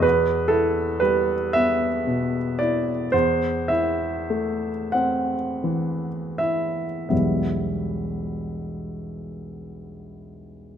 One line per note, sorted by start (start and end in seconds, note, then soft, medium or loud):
0.00 3.06 E2 soft
0.00 0.49 B4 medium
0.48 1.34 E4 soft
0.48 1.01 A4 medium
1.00 1.86 G3 soft
1.00 1.54 B4 medium
1.53 2.37 B3 soft
1.53 2.57 E5 medium
2.07 2.90 B2 soft
2.59 3.13 E4 soft
2.59 3.13 D5 medium
3.12 7.07 E2 soft
3.12 3.69 C5 medium
3.68 4.68 E4 soft
3.68 4.94 E5 medium
4.30 5.35 A3 soft
4.92 6.09 C4 soft
4.92 6.39 F#5 medium
5.64 6.85 E3 soft
6.38 7.09 E4 soft
6.38 7.07 E5 soft
7.09 10.78 E1 soft
7.09 10.78 B1 soft
7.09 10.78 E3 soft
7.09 10.78 G3 soft
7.09 10.78 B3 soft
7.09 10.78 E4 soft
7.09 10.78 E5 soft